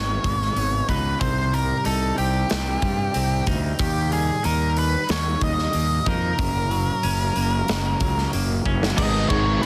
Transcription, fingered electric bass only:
0.00 0.17 G#1 medium
0.24 0.49 G#1 medium
0.56 0.81 G#1 medium
0.89 1.14 C#2 medium
1.22 1.71 C2 medium
1.86 2.11 C2 medium
2.18 2.43 C2 medium
2.51 2.76 C2 medium
2.82 3.07 G2 medium
3.15 3.40 C2 medium
3.47 3.72 D2 medium
3.80 4.30 D#2 medium
4.45 4.95 D#2 medium
5.09 5.35 D#2 medium
5.42 5.67 D#2 medium
5.74 5.99 D#2 medium
6.07 6.32 F2 medium
6.39 6.89 F#1 medium
7.04 7.29 F#1 medium
7.36 7.61 F#1 medium
7.69 7.94 F#1 medium
8.01 8.26 C#2 medium
8.34 8.59 F#1 medium
8.66 8.91 F#1 medium
8.98 9.25 G#1 medium
9.31 9.58 G#1 medium

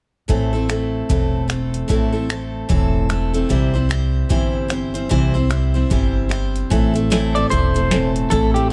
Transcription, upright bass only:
0.29 1.01 A1 medium
1.10 1.81 E1 medium
1.90 2.61 A1 medium
2.70 3.42 E1 medium
3.50 4.22 C2 medium
4.30 5.02 G1 medium
5.11 5.83 C2 medium
5.91 6.63 G1 medium
6.71 7.43 A1 medium
7.52 8.23 E1 medium
8.32 8.72 A1 medium

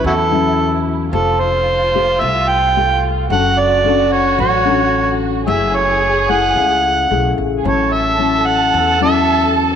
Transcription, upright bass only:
0.04 1.09 E2 medium
1.13 2.17 F1 loud
2.21 3.26 C2 medium
3.30 4.35 F#1 medium
4.39 5.43 A1 loud
5.47 6.52 F#1 loud
6.56 7.07 C#2 medium
7.11 7.35 B1 medium
7.38 7.62 A1 medium
7.65 8.70 A1 medium
8.74 9.76 E2 medium

